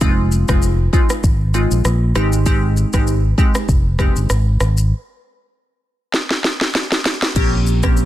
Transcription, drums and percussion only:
0.01 kick loud
0.01 shaker medium
0.32 shaker soft
0.49 kick medium
0.49 cross-stick loud
0.49 shaker medium
0.62 shaker medium
0.93 kick medium
0.93 shaker soft
1.10 cross-stick medium
1.10 shaker medium
1.24 kick medium
1.24 shaker medium
1.54 shaker medium
1.71 shaker medium
1.85 cross-stick medium
1.85 shaker medium
2.16 cross-stick medium
2.16 shaker soft
2.33 shaker medium
2.46 kick loud
2.46 shaker medium
2.77 shaker soft
2.94 kick medium
2.94 cross-stick loud
2.94 shaker medium
3.07 shaker medium
3.38 kick medium
3.38 shaker soft
3.55 cross-stick loud
3.55 shaker medium
3.69 kick medium
3.69 shaker medium
3.99 kick medium
3.99 cross-stick medium
3.99 shaker medium
4.16 shaker medium
4.30 cross-stick medium
4.30 shaker medium
4.60 cross-stick medium
4.60 shaker soft
4.78 shaker medium
6.14 snare medium
6.31 snare medium
6.44 snare medium
6.61 snare medium
6.75 snare medium
6.92 snare medium
7.06 snare loud
7.22 snare medium
7.36 kick loud
7.36 crash loud
7.36 shaker medium
7.67 shaker medium
7.83 kick medium
7.83 cross-stick loud
7.83 shaker medium
7.97 shaker medium

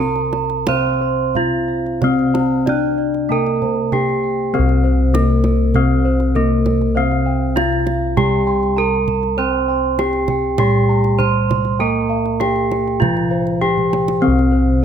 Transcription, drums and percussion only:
0.15 kendang slap soft
0.33 kendang high medium
0.50 kendang slap soft
0.67 kendang high medium
1.35 kendang low medium
1.86 kendang slap soft
2.02 kendang high soft
2.02 kendang low medium
2.19 kendang slap soft
2.35 kendang high medium
2.67 kendang slap soft
2.67 kendang high medium
2.67 kendang low medium
2.98 kendang slap soft
3.14 kendang slap soft
3.46 kendang slap soft
3.62 kendang low soft
3.92 kendang slap soft
3.92 kendang low medium
4.09 kendang slap soft
4.69 kendang slap soft
5.15 kendang high medium
5.29 kendang slap soft
5.44 kendang high medium
5.44 kendang low soft
5.74 kendang low medium
6.20 kendang slap soft
6.35 kendang low medium
6.66 kendang high medium
6.66 kendang low medium
6.81 kendang slap soft
7.11 kendang slap soft
7.57 kendang high medium
7.72 kendang slap soft
7.87 kendang high soft
8.17 kendang low medium
8.63 kendang slap soft
9.08 kendang low medium
9.23 kendang slap soft
9.99 kendang high medium
10.13 kendang slap soft
10.28 kendang high medium
10.28 kendang low medium
10.58 kendang low loud
11.04 kendang slap soft
11.20 kendang low medium
11.51 kendang high medium
11.51 kendang low medium
11.65 kendang slap soft
12.26 kendang slap soft
12.41 kendang high medium
12.56 kendang slap soft
12.72 kendang high medium
12.87 kendang slap soft
13.02 kendang low medium
13.17 kendang slap soft
13.47 kendang slap soft
13.62 kendang low soft
13.78 kendang low soft
13.93 kendang high medium
14.08 kendang high medium
14.39 kendang slap soft

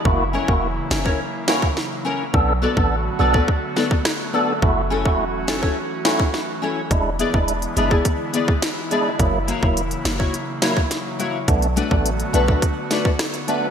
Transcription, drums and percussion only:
0.05 kick loud
0.48 kick medium
0.91 snare loud
1.06 kick medium
1.48 snare loud
1.62 kick loud
1.77 snare medium
2.34 kick loud
2.77 kick medium
3.34 kick medium
3.48 kick medium
3.77 snare medium
3.91 kick loud
4.05 cross-stick medium
4.05 snare loud
4.62 kick loud
5.05 kick medium
5.48 snare loud
5.63 kick medium
6.05 snare loud
6.20 kick loud
6.34 snare medium
6.91 kick loud
6.91 closed hi-hat medium
7.19 closed hi-hat medium
7.34 kick medium
7.48 closed hi-hat medium
7.62 closed hi-hat medium
7.77 closed hi-hat medium
7.91 kick medium
8.05 kick medium
8.05 closed hi-hat medium
8.34 closed hi-hat medium
8.48 kick loud
8.62 snare loud
8.62 closed hi-hat medium
8.91 closed hi-hat medium
9.19 kick loud
9.19 closed hi-hat medium
9.48 closed hi-hat medium
9.63 kick medium
9.77 closed hi-hat medium
9.91 closed hi-hat medium
10.05 snare loud
10.05 closed hi-hat medium
10.20 kick medium
10.34 closed hi-hat medium
10.62 snare loud
10.62 closed hi-hat medium
10.77 kick medium
10.91 snare medium
10.91 closed hi-hat medium
11.20 closed hi-hat medium
11.48 kick loud
11.48 closed hi-hat medium
11.62 closed hi-hat soft
11.77 closed hi-hat medium
11.91 kick medium
12.06 closed hi-hat medium
12.20 closed hi-hat medium
12.34 closed hi-hat medium
12.48 kick medium
12.62 kick medium
12.62 closed hi-hat medium
12.91 snare medium
12.91 closed hi-hat medium
13.05 kick medium
13.19 cross-stick medium
13.19 snare loud
13.19 closed hi-hat medium
13.34 closed hi-hat soft
13.48 closed hi-hat medium

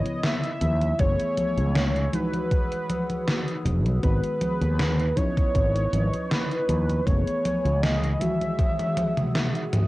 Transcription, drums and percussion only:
0.06 closed hi-hat soft
0.06 high conga soft
0.23 snare loud
0.23 closed hi-hat medium
0.23 high conga soft
0.44 closed hi-hat soft
0.61 closed hi-hat medium
0.61 high conga medium
0.81 closed hi-hat soft
0.81 high conga soft
0.99 kick loud
0.99 closed hi-hat medium
0.99 high conga soft
1.19 closed hi-hat soft
1.37 closed hi-hat medium
1.37 high conga medium
1.57 closed hi-hat soft
1.57 high conga soft
1.75 snare loud
1.75 closed hi-hat medium
1.75 high conga soft
1.96 closed hi-hat soft
2.13 closed hi-hat medium
2.13 high conga medium
2.33 closed hi-hat soft
2.33 high conga soft
2.51 kick loud
2.51 closed hi-hat medium
2.51 high conga soft
2.72 closed hi-hat soft
2.90 closed hi-hat medium
2.90 high conga medium
3.10 closed hi-hat soft
3.10 high conga soft
3.28 snare loud
3.28 closed hi-hat medium
3.28 high conga soft
3.48 closed hi-hat soft
3.66 closed hi-hat medium
3.66 high conga medium
3.86 closed hi-hat soft
3.86 high conga soft
4.03 kick loud
4.03 closed hi-hat medium
4.03 high conga soft
4.24 closed hi-hat soft
4.41 closed hi-hat medium
4.41 high conga medium
4.61 closed hi-hat soft
4.61 high conga soft
4.79 snare loud
4.79 closed hi-hat medium
4.99 closed hi-hat soft
5.17 kick medium
5.17 closed hi-hat medium
5.17 high conga medium
5.37 kick loud
5.37 closed hi-hat soft
5.37 high conga soft
5.55 kick loud
5.55 closed hi-hat medium
5.55 high conga soft
5.76 closed hi-hat soft
5.93 closed hi-hat medium
5.93 high conga medium
6.14 closed hi-hat soft
6.14 high conga soft
6.31 snare loud
6.31 closed hi-hat medium
6.31 high conga soft
6.51 closed hi-hat soft
6.69 closed hi-hat medium
6.69 high conga medium
6.90 closed hi-hat soft
6.90 high conga soft
7.07 kick loud
7.07 closed hi-hat medium
7.07 high conga soft
7.27 closed hi-hat soft
7.45 closed hi-hat loud
7.45 high conga medium
7.65 closed hi-hat soft
7.65 high conga soft
7.83 snare loud
7.83 closed hi-hat medium
7.83 high conga soft
8.04 closed hi-hat soft
8.21 closed hi-hat medium
8.21 high conga medium
8.41 closed hi-hat soft
8.41 high conga soft
8.59 kick loud
8.59 closed hi-hat medium
8.59 high tom medium
8.59 high conga soft
8.79 closed hi-hat soft
8.79 high tom medium
8.97 closed hi-hat medium
8.97 high tom medium
8.97 high conga medium
9.17 closed hi-hat soft
9.17 mid tom medium
9.17 high conga soft
9.35 snare loud
9.35 closed hi-hat medium
9.35 mid tom medium
9.35 high conga soft
9.55 closed hi-hat soft
9.73 closed hi-hat loud
9.73 mid tom loud
9.73 high conga medium

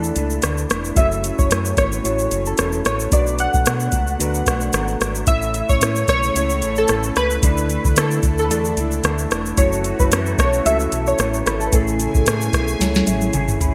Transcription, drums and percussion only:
0.04 shaker medium
0.16 closed hi-hat medium
0.16 shaker medium
0.30 shaker soft
0.42 cross-stick medium
0.42 closed hi-hat medium
0.42 shaker medium
0.58 shaker soft
0.70 cross-stick medium
0.70 closed hi-hat soft
0.70 shaker medium
0.85 shaker soft
0.96 kick loud
0.96 closed hi-hat medium
0.96 shaker medium
1.12 shaker soft
1.24 closed hi-hat medium
1.24 shaker soft
1.39 kick medium
1.39 shaker soft
1.51 cross-stick medium
1.51 closed hi-hat medium
1.51 shaker medium
1.65 shaker medium
1.77 kick medium
1.77 cross-stick medium
1.77 closed hi-hat medium
1.77 shaker medium
1.92 shaker medium
2.05 closed hi-hat medium
2.05 shaker medium
2.19 shaker medium
2.31 closed hi-hat medium
2.31 shaker medium
2.46 shaker soft
2.58 cross-stick medium
2.58 closed hi-hat medium
2.58 shaker medium
2.72 shaker soft
2.85 cross-stick medium
2.85 closed hi-hat soft
2.85 shaker soft
3.00 shaker medium
3.12 kick loud
3.12 closed hi-hat medium
3.12 shaker medium
3.27 shaker soft
3.39 closed hi-hat medium
3.39 shaker soft
3.54 kick medium
3.54 shaker soft
3.66 cross-stick loud
3.66 closed hi-hat medium
3.66 shaker medium
3.80 shaker medium
3.92 kick medium
3.92 closed hi-hat medium
3.92 shaker medium
4.07 shaker soft
4.20 closed hi-hat medium
4.20 shaker medium
4.34 shaker medium
4.46 kick medium
4.46 cross-stick medium
4.46 closed hi-hat medium
4.46 shaker medium
4.61 shaker soft
4.73 cross-stick medium
4.73 closed hi-hat medium
4.73 shaker medium
4.88 shaker soft
5.01 cross-stick medium
5.01 closed hi-hat soft
5.01 shaker soft
5.15 shaker medium
5.27 kick loud
5.27 closed hi-hat medium
5.27 shaker medium
5.42 shaker soft
5.54 closed hi-hat soft
5.54 shaker medium
5.69 kick medium
5.69 shaker medium
5.81 cross-stick loud
5.81 closed hi-hat medium
5.81 shaker medium
5.96 shaker medium
6.08 kick medium
6.08 cross-stick medium
6.08 closed hi-hat medium
6.08 shaker medium
6.23 shaker medium
6.36 closed hi-hat medium
6.36 shaker medium
6.50 shaker soft
6.62 closed hi-hat medium
6.62 shaker medium
6.76 shaker soft
6.88 cross-stick medium
6.88 closed hi-hat medium
6.88 shaker medium
7.03 shaker soft
7.16 cross-stick medium
7.16 closed hi-hat soft
7.16 shaker medium
7.30 shaker soft
7.43 kick loud
7.43 closed hi-hat medium
7.43 shaker medium
7.58 shaker soft
7.70 closed hi-hat soft
7.70 shaker medium
7.85 kick loud
7.85 shaker medium
7.96 cross-stick loud
7.96 closed hi-hat medium
7.96 shaker medium
8.11 shaker medium
8.23 kick medium
8.23 closed hi-hat soft
8.23 shaker medium
8.38 shaker medium
8.51 closed hi-hat medium
8.51 shaker medium
8.65 shaker soft
8.77 closed hi-hat medium
8.77 shaker medium
8.91 shaker soft
9.04 cross-stick medium
9.04 closed hi-hat medium
9.04 shaker medium
9.18 shaker soft
9.31 cross-stick medium
9.31 closed hi-hat soft
9.31 shaker soft
9.46 shaker medium
9.57 kick loud
9.57 closed hi-hat medium
9.57 shaker medium
9.73 shaker soft
9.84 closed hi-hat soft
9.84 shaker medium
10.00 kick medium
10.00 shaker medium
10.12 cross-stick loud
10.12 closed hi-hat medium
10.12 shaker medium
10.26 shaker medium
10.38 kick loud
10.38 cross-stick loud
10.38 closed hi-hat soft
10.38 shaker medium
10.53 shaker medium
10.66 closed hi-hat medium
10.66 shaker medium
10.80 shaker soft
10.92 closed hi-hat medium
10.92 shaker medium
11.07 shaker soft
11.19 cross-stick medium
11.19 closed hi-hat medium
11.19 shaker medium
11.34 shaker soft
11.46 cross-stick medium
11.46 closed hi-hat soft
11.46 shaker soft
11.61 shaker medium
11.73 kick loud
11.73 closed hi-hat medium
11.73 shaker medium
11.88 shaker soft
12.00 closed hi-hat medium
12.00 shaker medium
12.15 kick medium
12.15 shaker soft
12.26 cross-stick loud
12.26 closed hi-hat medium
12.26 shaker medium
12.41 shaker medium
12.53 kick loud
12.53 cross-stick medium
12.53 closed hi-hat medium
12.53 shaker medium
12.68 shaker medium
12.81 snare medium
12.81 closed hi-hat medium
12.81 shaker medium
12.95 snare medium
12.95 shaker medium
13.07 closed hi-hat medium
13.07 high tom medium
13.07 shaker medium
13.21 high tom medium
13.21 shaker soft
13.33 closed hi-hat medium
13.33 mid tom medium
13.33 shaker medium
13.48 mid tom medium
13.48 shaker soft
13.61 closed hi-hat soft
13.61 floor tom medium
13.61 shaker soft

